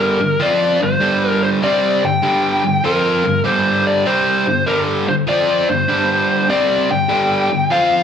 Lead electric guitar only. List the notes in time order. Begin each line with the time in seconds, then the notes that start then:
Already playing: A#4
0.42 D5
0.83 C5
1.30 A#4
1.44 C5
1.64 D5
2.05 G5
2.85 A#4
3.46 C5
3.87 D5
4.07 C5
4.67 A#4
5.09 C5
5.29 D5
5.69 C5
6.50 D5
6.91 G5
7.72 F5